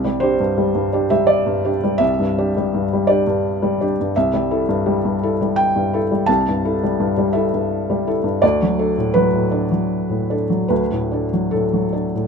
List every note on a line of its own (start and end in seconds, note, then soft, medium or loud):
0.00 1.97 C2 medium
0.05 0.33 G3 soft
0.20 0.38 D4 soft
0.20 0.39 G4 soft
0.20 1.11 C5 medium
0.40 0.69 G2 soft
0.58 0.87 G3 soft
0.75 1.04 G2 soft
0.93 1.10 D4 soft
0.93 1.10 G4 soft
1.10 1.69 G3 soft
1.10 1.29 E5 medium
1.27 2.00 D5 medium
1.46 1.76 G2 soft
1.64 1.81 D4 soft
1.64 1.82 G4 soft
1.84 2.13 G3 soft
1.98 4.10 C2 medium
1.98 3.07 E5 medium
2.20 2.48 G2 soft
2.38 2.54 D4 soft
2.38 2.54 G4 soft
2.57 2.85 G3 soft
2.75 3.02 G2 soft
2.93 3.21 G3 soft
3.07 3.25 D4 soft
3.07 3.25 G4 soft
3.07 3.79 D5 medium
3.27 3.83 G2 soft
3.62 3.90 G3 soft
3.81 3.96 D4 soft
3.81 3.96 G4 soft
4.01 4.17 G2 soft
4.16 6.25 C2 medium
4.16 5.58 E5 medium
4.34 4.61 G3 medium
4.51 4.67 E4 soft
4.51 4.67 A4 soft
4.69 4.97 G2 soft
4.86 5.15 G3 soft
5.05 5.33 G2 soft
5.23 5.39 E4 soft
5.23 5.39 A4 soft
5.41 5.97 G3 soft
5.56 6.27 G5 medium
5.76 6.04 G2 soft
5.93 6.09 E4 soft
5.93 6.09 A4 soft
6.11 6.39 G3 soft
6.26 8.39 C2 medium
6.26 7.33 A5 medium
6.48 6.75 G2 soft
6.65 6.80 E4 soft
6.65 6.80 A4 soft
6.83 7.10 G3 soft
7.00 7.28 G2 soft
7.18 7.45 G3 soft
7.33 7.50 E4 soft
7.33 7.51 A4 soft
7.33 8.06 E5 medium
7.54 8.11 G2 soft
7.90 8.18 G3 soft
8.07 8.23 E4 soft
8.07 8.23 A4 soft
8.24 8.42 G2 soft
8.42 10.67 D2 medium
8.42 9.15 D5 medium
8.62 8.90 F#3 soft
8.79 8.95 D4 soft
8.79 8.95 A4 soft
8.98 9.26 A2 soft
9.14 9.45 F#3 soft
9.14 10.67 B4 medium
9.33 9.63 A2 soft
9.51 9.69 D4 soft
9.51 9.69 A4 soft
9.71 10.34 F#3 soft
10.09 10.42 A2 soft
10.30 10.48 D4 soft
10.30 10.48 A4 soft
10.50 10.83 F#3 soft
10.68 12.27 D2 soft
10.68 11.51 B4 medium
10.92 11.24 A2 soft
11.12 11.30 D4 soft
11.12 11.31 A4 soft
11.33 11.65 F#3 soft
11.51 11.85 A2 soft
11.51 11.92 A4 soft
11.73 12.05 F#3 soft
11.93 12.11 D4 soft
11.93 12.12 A4 soft
12.15 12.27 A2 soft